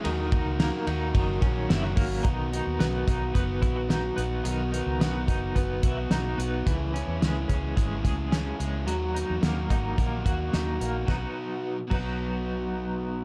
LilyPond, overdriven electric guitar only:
\new Staff \with { instrumentName = "Overdriven electric guitar" } { \time 4/4 \key b \major \tempo 4 = 109 <dis fis ais dis' fis'>8 <ais dis' fis'>8 <dis fis ais dis' fis'>8 <ais dis' fis'>8 <fis ais cis' fis'>8 <fis ais cis' fis'>8 <fis, dis fis ais cis' fis'>8 <fis ais cis' fis'>8 | <b, fis b dis' fis'>8 <b dis' fis'>8 <fis b dis' fis'>8 <b dis' fis'>8 <b, fis b dis' fis'>8 <b dis' fis'>8 <fis b dis' fis'>8 <b dis' fis'>8 | <b, fis b dis' fis'>8 <b dis' fis'>8 <fis b dis' fis'>8 <b dis' fis'>8 <b, fis b dis' fis'>8 <b dis' fis'>8 <fis b dis' fis'>8 <b dis' fis'>8 | <cis e cis' e' gis'>8 <cis' e' gis'>8 <e cis' e' gis'>8 <cis' e' gis'>8 <cis e cis' e' gis'>8 <cis' e' gis'>8 <e cis' e' gis'>8 <cis' e' gis'>8 |
<dis fis ais dis' fis'>8 <ais dis' fis'>8 <fis ais dis' fis'>8 <ais dis' fis'>8 <dis fis ais dis' fis'>8 <ais dis' fis'>8 <fis ais dis' fis'>8 <ais dis' fis'>8 | <b, fis b dis' fis'>8 r4 <b, fis b dis' fis'>2~ <b, fis b dis' fis'>8 | }